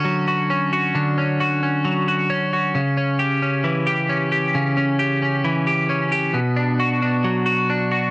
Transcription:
Already playing: D3 C#4 F#4
0.05 F#3
0.28 F#4
0.50 C#4
0.73 F#4
0.95 D3
1.18 C#4
1.40 F#4
1.63 C#4
1.85 F#3
2.08 F#4
2.30 C#4
2.53 F#4
2.75 C#3
2.97 C#4
3.19 G4
3.42 C#4
3.64 E3
3.87 G4
4.09 C#4
4.32 G4
4.55 C#3
4.77 C#4
4.99 G4
5.22 C#4
5.45 E3
5.67 G4
5.89 C#4
6.12 G4
6.34 B2
6.56 D4
6.80 F#4
7.02 D4
7.24 F#3
7.46 F#4
7.70 D4
7.92 F#4

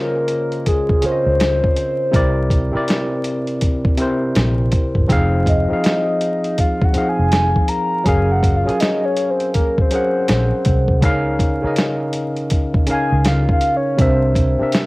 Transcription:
Already playing: C#3 C#4 F4 A#4 C5 C#5 D#5
0.28 closed hi-hat
0.52 closed hi-hat
0.66 G#4, kick, closed hi-hat
0.89 kick
1.01 C#3 C#4 F4 A#4, muted fingered electric bass stroke, closed hi-hat
1.05 C5 C#5
1.12 D#5
1.26 C#2
1.40 snare, closed hi-hat
1.64 kick
1.76 closed hi-hat
2.11 C2 C3 C4 E4 A#4, kick, closed hi-hat
2.16 D5
2.50 kick, closed hi-hat
2.72 C3 C4 E4 A#4, muted fingered electric bass stroke
2.77 D5
2.88 snare, closed hi-hat
3.24 closed hi-hat
3.47 closed hi-hat
3.61 kick, closed hi-hat
3.85 kick
3.97 C3 C4 E4 A#4, closed hi-hat
4.02 C5
4.35 A#1, snare, closed hi-hat
4.72 kick, closed hi-hat
4.95 G1, kick
5.08 F1 F3 C4 D#4 G#4, kick, closed hi-hat
5.12 F5
5.46 D#5, kick, closed hi-hat
5.68 F3 C4 D#4 G#4, muted fingered electric bass stroke
5.73 F5
5.84 snare, closed hi-hat
6.21 closed hi-hat
6.44 closed hi-hat
6.58 F5, kick, closed hi-hat
6.82 F#5, kick
6.93 F3 C4 D#4 G#4, muted fingered electric bass stroke, closed hi-hat
6.98 F5
7.09 G#5
7.19 F1
7.32 snare, closed hi-hat
7.56 kick
7.68 A#5, closed hi-hat
8.04 F#1 F#3 C#4 G#4 A#4 G#5, kick, closed hi-hat
8.09 F5
8.32 F#5
8.43 kick, closed hi-hat
8.57 F5
8.65 F#3 C#4 G#4 A#4, muted fingered electric bass stroke, closed hi-hat
8.70 G#5
8.80 D#5, snare, closed hi-hat
9.05 C#5
9.16 closed hi-hat
9.30 C5
9.40 closed hi-hat
9.54 A#4, kick, closed hi-hat
9.78 C5, kick
9.91 F#3 C#4 G#4 A#4, closed hi-hat
9.95 F#5
10.28 A#1, snare, closed hi-hat
10.65 C2, kick, closed hi-hat
10.88 kick
11.01 C#2 C#3 C#4 D#4 A#4, kick, closed hi-hat
11.05 F5
11.39 kick, closed hi-hat
11.62 C#3 C#4 D#4 A#4, muted fingered electric bass stroke
11.67 D#5
11.76 snare, closed hi-hat
12.13 closed hi-hat
12.36 closed hi-hat
12.50 kick, closed hi-hat
12.74 kick
12.86 C#3 C#4 D#4 A#4, muted fingered electric bass stroke, closed hi-hat
12.91 F5 G#5
13.12 C#2
13.25 F5, snare, closed hi-hat
13.49 F5, kick
13.61 closed hi-hat
13.77 C#5
13.97 C2 C3 C4 D4 A#4, kick, closed hi-hat
14.01 C5 E5
14.35 kick, closed hi-hat
14.58 C3 C4 D4 A#4, muted fingered electric bass stroke
14.63 E5
14.72 snare, closed hi-hat

